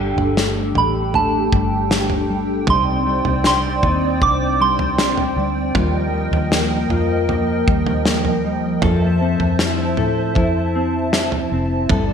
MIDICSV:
0, 0, Header, 1, 6, 480
1, 0, Start_track
1, 0, Tempo, 769231
1, 1669, Time_signature, 4, 2, 24, 8
1, 7571, End_track
2, 0, Start_track
2, 0, Title_t, "Synth bell"
2, 0, Program_c, 0, 98
2, 486, Note_on_c, 0, 83, 64
2, 719, Note_on_c, 0, 81, 69
2, 724, Note_off_c, 0, 83, 0
2, 1685, Note_on_c, 0, 84, 84
2, 1703, Note_off_c, 0, 81, 0
2, 2157, Note_off_c, 0, 84, 0
2, 2164, Note_on_c, 0, 84, 81
2, 2638, Note_on_c, 0, 86, 84
2, 2651, Note_off_c, 0, 84, 0
2, 2880, Note_off_c, 0, 86, 0
2, 2880, Note_on_c, 0, 84, 83
2, 3329, Note_off_c, 0, 84, 0
2, 7571, End_track
3, 0, Start_track
3, 0, Title_t, "Analog synth pad"
3, 0, Program_c, 1, 89
3, 0, Note_on_c, 1, 62, 70
3, 0, Note_on_c, 1, 67, 65
3, 0, Note_on_c, 1, 69, 63
3, 0, Note_on_c, 1, 79, 82
3, 1651, Note_off_c, 1, 62, 0
3, 1651, Note_off_c, 1, 67, 0
3, 1651, Note_off_c, 1, 69, 0
3, 1664, Note_on_c, 1, 74, 65
3, 1669, Note_on_c, 1, 60, 72
3, 1669, Note_on_c, 1, 72, 69
3, 3567, Note_off_c, 1, 74, 0
3, 3570, Note_off_c, 1, 60, 0
3, 3570, Note_off_c, 1, 72, 0
3, 3585, Note_on_c, 1, 70, 68
3, 3585, Note_on_c, 1, 75, 68
3, 3587, Note_on_c, 1, 53, 74
3, 5487, Note_off_c, 1, 79, 0
3, 5488, Note_off_c, 1, 70, 0
3, 5488, Note_off_c, 1, 75, 0
3, 5496, Note_on_c, 1, 72, 66
3, 5501, Note_on_c, 1, 81, 78
3, 5502, Note_on_c, 1, 76, 69
3, 7403, Note_off_c, 1, 53, 0
3, 7403, Note_off_c, 1, 72, 0
3, 7406, Note_off_c, 1, 76, 0
3, 7430, Note_on_c, 1, 69, 71
3, 7432, Note_on_c, 1, 67, 70
3, 7433, Note_on_c, 1, 74, 68
3, 7571, Note_off_c, 1, 67, 0
3, 7571, Note_off_c, 1, 69, 0
3, 7571, Note_off_c, 1, 74, 0
3, 7571, Note_off_c, 1, 81, 0
3, 7571, End_track
4, 0, Start_track
4, 0, Title_t, "Clean electric guitar"
4, 0, Program_c, 2, 27
4, 0, Note_on_c, 2, 55, 51
4, 0, Note_on_c, 2, 62, 57
4, 235, Note_on_c, 2, 57, 51
4, 470, Note_off_c, 2, 62, 0
4, 473, Note_on_c, 2, 62, 55
4, 707, Note_off_c, 2, 57, 0
4, 714, Note_on_c, 2, 57, 55
4, 953, Note_off_c, 2, 55, 0
4, 955, Note_on_c, 2, 55, 54
4, 1188, Note_off_c, 2, 57, 0
4, 1195, Note_on_c, 2, 57, 51
4, 1431, Note_off_c, 2, 55, 0
4, 1433, Note_on_c, 2, 55, 52
4, 1669, Note_off_c, 2, 55, 0
4, 1672, Note_on_c, 2, 55, 69
4, 1673, Note_off_c, 2, 62, 0
4, 1676, Note_on_c, 2, 63, 58
4, 1720, Note_off_c, 2, 57, 0
4, 1910, Note_off_c, 2, 55, 0
4, 1913, Note_on_c, 2, 55, 53
4, 2152, Note_on_c, 2, 62, 56
4, 2393, Note_off_c, 2, 63, 0
4, 2395, Note_on_c, 2, 63, 58
4, 2621, Note_off_c, 2, 62, 0
4, 2629, Note_on_c, 2, 62, 57
4, 2870, Note_off_c, 2, 55, 0
4, 2872, Note_on_c, 2, 55, 54
4, 3106, Note_off_c, 2, 62, 0
4, 3113, Note_on_c, 2, 62, 52
4, 3347, Note_off_c, 2, 55, 0
4, 3350, Note_on_c, 2, 55, 51
4, 3589, Note_off_c, 2, 55, 0
4, 3591, Note_on_c, 2, 55, 71
4, 3594, Note_off_c, 2, 63, 0
4, 3596, Note_on_c, 2, 65, 58
4, 3639, Note_off_c, 2, 62, 0
4, 3818, Note_off_c, 2, 55, 0
4, 3826, Note_on_c, 2, 55, 52
4, 4068, Note_on_c, 2, 58, 56
4, 4304, Note_off_c, 2, 65, 0
4, 4306, Note_on_c, 2, 65, 58
4, 4543, Note_off_c, 2, 58, 0
4, 4551, Note_on_c, 2, 58, 59
4, 4781, Note_off_c, 2, 55, 0
4, 4789, Note_on_c, 2, 55, 56
4, 5021, Note_off_c, 2, 58, 0
4, 5028, Note_on_c, 2, 58, 51
4, 5262, Note_off_c, 2, 55, 0
4, 5269, Note_on_c, 2, 55, 51
4, 5505, Note_off_c, 2, 55, 0
4, 5508, Note_on_c, 2, 53, 70
4, 5513, Note_on_c, 2, 69, 57
4, 5557, Note_off_c, 2, 58, 0
4, 5747, Note_on_c, 2, 60, 52
4, 5984, Note_off_c, 2, 65, 0
4, 5986, Note_on_c, 2, 64, 54
4, 6225, Note_off_c, 2, 69, 0
4, 6228, Note_on_c, 2, 69, 59
4, 6462, Note_off_c, 2, 64, 0
4, 6470, Note_on_c, 2, 64, 60
4, 6704, Note_off_c, 2, 60, 0
4, 6711, Note_on_c, 2, 60, 55
4, 6943, Note_off_c, 2, 64, 0
4, 6951, Note_on_c, 2, 64, 48
4, 7185, Note_off_c, 2, 60, 0
4, 7192, Note_on_c, 2, 60, 52
4, 7427, Note_off_c, 2, 53, 0
4, 7430, Note_off_c, 2, 69, 0
4, 7430, Note_on_c, 2, 55, 66
4, 7432, Note_on_c, 2, 69, 59
4, 7478, Note_off_c, 2, 64, 0
4, 7479, Note_off_c, 2, 60, 0
4, 7571, Note_off_c, 2, 55, 0
4, 7571, Note_off_c, 2, 69, 0
4, 7571, End_track
5, 0, Start_track
5, 0, Title_t, "Fingered electric bass"
5, 0, Program_c, 3, 33
5, 0, Note_on_c, 3, 31, 91
5, 91, Note_off_c, 3, 31, 0
5, 103, Note_on_c, 3, 31, 75
5, 448, Note_off_c, 3, 31, 0
5, 466, Note_on_c, 3, 33, 73
5, 924, Note_off_c, 3, 33, 0
5, 952, Note_on_c, 3, 31, 82
5, 1645, Note_off_c, 3, 31, 0
5, 1670, Note_on_c, 3, 36, 88
5, 2011, Note_off_c, 3, 36, 0
5, 2029, Note_on_c, 3, 36, 78
5, 2371, Note_off_c, 3, 36, 0
5, 2391, Note_on_c, 3, 39, 81
5, 2618, Note_off_c, 3, 39, 0
5, 2630, Note_on_c, 3, 36, 81
5, 3325, Note_off_c, 3, 36, 0
5, 3347, Note_on_c, 3, 38, 68
5, 3576, Note_off_c, 3, 38, 0
5, 3590, Note_on_c, 3, 39, 92
5, 3932, Note_off_c, 3, 39, 0
5, 3941, Note_on_c, 3, 39, 77
5, 4287, Note_off_c, 3, 39, 0
5, 4303, Note_on_c, 3, 41, 79
5, 4762, Note_off_c, 3, 41, 0
5, 4791, Note_on_c, 3, 39, 78
5, 5485, Note_off_c, 3, 39, 0
5, 5506, Note_on_c, 3, 41, 90
5, 5849, Note_off_c, 3, 41, 0
5, 5862, Note_on_c, 3, 41, 70
5, 6207, Note_off_c, 3, 41, 0
5, 6227, Note_on_c, 3, 45, 77
5, 6456, Note_off_c, 3, 45, 0
5, 6466, Note_on_c, 3, 41, 85
5, 7163, Note_off_c, 3, 41, 0
5, 7187, Note_on_c, 3, 29, 65
5, 7416, Note_off_c, 3, 29, 0
5, 7425, Note_on_c, 3, 31, 92
5, 7571, Note_off_c, 3, 31, 0
5, 7571, End_track
6, 0, Start_track
6, 0, Title_t, "Drums"
6, 112, Note_on_c, 9, 43, 55
6, 174, Note_off_c, 9, 43, 0
6, 233, Note_on_c, 9, 38, 83
6, 295, Note_off_c, 9, 38, 0
6, 470, Note_on_c, 9, 43, 54
6, 533, Note_off_c, 9, 43, 0
6, 712, Note_on_c, 9, 43, 54
6, 774, Note_off_c, 9, 43, 0
6, 952, Note_on_c, 9, 36, 86
6, 1014, Note_off_c, 9, 36, 0
6, 1191, Note_on_c, 9, 38, 91
6, 1254, Note_off_c, 9, 38, 0
6, 1308, Note_on_c, 9, 43, 56
6, 1370, Note_off_c, 9, 43, 0
6, 1667, Note_on_c, 9, 43, 90
6, 1670, Note_on_c, 9, 36, 91
6, 1729, Note_off_c, 9, 43, 0
6, 1732, Note_off_c, 9, 36, 0
6, 2028, Note_on_c, 9, 43, 59
6, 2090, Note_off_c, 9, 43, 0
6, 2148, Note_on_c, 9, 38, 83
6, 2211, Note_off_c, 9, 38, 0
6, 2389, Note_on_c, 9, 43, 55
6, 2390, Note_on_c, 9, 36, 76
6, 2452, Note_off_c, 9, 43, 0
6, 2453, Note_off_c, 9, 36, 0
6, 2631, Note_on_c, 9, 36, 76
6, 2633, Note_on_c, 9, 43, 60
6, 2693, Note_off_c, 9, 36, 0
6, 2695, Note_off_c, 9, 43, 0
6, 2990, Note_on_c, 9, 43, 60
6, 3052, Note_off_c, 9, 43, 0
6, 3111, Note_on_c, 9, 38, 92
6, 3173, Note_off_c, 9, 38, 0
6, 3229, Note_on_c, 9, 43, 56
6, 3292, Note_off_c, 9, 43, 0
6, 3588, Note_on_c, 9, 43, 88
6, 3590, Note_on_c, 9, 36, 94
6, 3650, Note_off_c, 9, 43, 0
6, 3652, Note_off_c, 9, 36, 0
6, 3949, Note_on_c, 9, 43, 57
6, 4012, Note_off_c, 9, 43, 0
6, 4067, Note_on_c, 9, 38, 92
6, 4130, Note_off_c, 9, 38, 0
6, 4307, Note_on_c, 9, 43, 56
6, 4370, Note_off_c, 9, 43, 0
6, 4548, Note_on_c, 9, 43, 56
6, 4611, Note_off_c, 9, 43, 0
6, 4790, Note_on_c, 9, 36, 88
6, 4853, Note_off_c, 9, 36, 0
6, 4908, Note_on_c, 9, 43, 56
6, 4970, Note_off_c, 9, 43, 0
6, 5026, Note_on_c, 9, 38, 93
6, 5089, Note_off_c, 9, 38, 0
6, 5146, Note_on_c, 9, 43, 54
6, 5208, Note_off_c, 9, 43, 0
6, 5504, Note_on_c, 9, 43, 92
6, 5507, Note_on_c, 9, 36, 87
6, 5566, Note_off_c, 9, 43, 0
6, 5570, Note_off_c, 9, 36, 0
6, 5865, Note_on_c, 9, 43, 57
6, 5927, Note_off_c, 9, 43, 0
6, 5985, Note_on_c, 9, 38, 88
6, 6047, Note_off_c, 9, 38, 0
6, 6223, Note_on_c, 9, 43, 53
6, 6285, Note_off_c, 9, 43, 0
6, 6461, Note_on_c, 9, 43, 55
6, 6466, Note_on_c, 9, 36, 74
6, 6523, Note_off_c, 9, 43, 0
6, 6528, Note_off_c, 9, 36, 0
6, 6945, Note_on_c, 9, 38, 91
6, 7008, Note_off_c, 9, 38, 0
6, 7064, Note_on_c, 9, 43, 53
6, 7126, Note_off_c, 9, 43, 0
6, 7422, Note_on_c, 9, 43, 97
6, 7426, Note_on_c, 9, 36, 90
6, 7485, Note_off_c, 9, 43, 0
6, 7488, Note_off_c, 9, 36, 0
6, 7571, End_track
0, 0, End_of_file